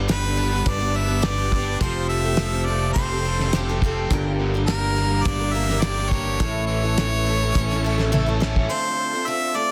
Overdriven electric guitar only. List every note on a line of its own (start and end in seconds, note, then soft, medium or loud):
0.00 0.95 G2 medium
0.00 1.23 D3 medium
0.08 1.81 G3 medium
0.38 0.94 B3 medium
0.67 1.52 D4 medium
0.96 1.81 B3 medium
1.25 1.85 G4 medium
1.54 1.82 D4 medium
1.82 2.37 F3 medium
2.10 2.67 A3 medium
2.38 3.82 F3 medium
2.68 3.25 A3 medium
2.98 3.82 C4 medium
3.27 4.12 A3 medium
3.54 4.11 G4 medium
3.83 4.11 C4 medium
4.11 5.55 G2 medium
4.40 5.83 D3 medium
4.68 6.12 G3 medium
4.96 5.53 A#3 medium
5.25 6.11 D4 medium
5.54 6.41 A#3 medium
5.83 6.41 G4 medium
6.12 6.41 D4 medium
6.39 7.84 A2 medium
6.68 6.96 E3 medium
6.97 8.41 E3 medium
7.25 7.82 A3 medium
7.55 8.40 C#4 medium
7.83 8.70 A3 medium
8.12 8.70 A4 medium
8.41 8.70 C#4 medium